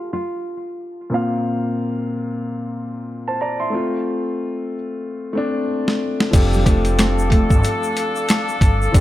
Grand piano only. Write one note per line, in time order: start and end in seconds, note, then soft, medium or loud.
1.10 2.14 A#2 medium
1.10 2.14 A#3 medium
1.10 2.15 C4 medium
1.10 2.15 F4 medium
1.14 2.16 F5 medium
3.28 3.40 C5 medium
3.28 3.40 A5 medium
3.41 3.59 D5 medium
3.41 3.59 A#5 medium
3.60 3.91 E5 medium
3.60 3.90 C6 medium
3.70 4.74 A3 medium
3.70 4.75 C4 medium
3.74 4.76 F4 medium
5.33 6.13 A3 medium
5.33 6.14 C4 medium
5.37 6.15 D4 medium
6.31 6.59 F3 medium
6.31 6.60 C4 medium
6.31 6.60 D4 medium
6.31 6.61 G4 medium
6.35 6.61 A4 medium
6.64 7.68 F3 medium
6.64 7.69 C4 medium
6.64 7.69 D4 medium
6.64 7.70 G4 medium
6.69 7.70 A4 medium
8.92 9.01 F3 medium
8.92 9.01 C4 medium
8.92 9.01 D4 medium
8.92 9.01 G4 medium
8.96 9.01 A4 medium